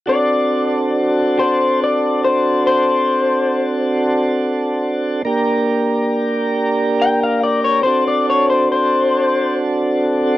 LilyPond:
<<
  \new Staff \with { instrumentName = "Clean electric guitar" } { \time 12/8 \key d \phrygian \tempo 4. = 46 d''4. c''8 d''8 c''8 c''2. | r2 g''16 f''16 d''16 cis''16 c''16 d''16 cis''16 c''16 c''4 r4 | }
  \new Staff \with { instrumentName = "Tonewheel organ" } { \time 12/8 \key d \phrygian <c' d' fis' a'>1. | <bes d' g' bes'>2. <c' d' fis' a'>2. | }
>>